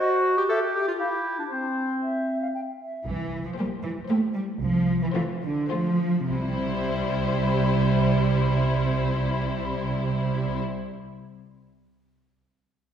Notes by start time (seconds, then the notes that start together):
0.00 F#4
0.38 G4
0.49 G4 A4 E5
0.74 G4
0.88 F4
0.99 E4 G4 F5
1.39 D4
1.50 C4 C5
2.02 E5
2.42 F5
2.55 G5
2.81 E5
3.06 C2 E3
3.45 F3
3.57 G3 A#3 G4 C5
3.83 E3
4.07 A3 A#3 G4 C5
4.35 G3
4.61 C2 F3
5.01 E3
5.14 E3 A3 F4 C5
5.42 D3
5.70 F3 A3 F4 C5
6.29 C2 C3 G3 E4 C5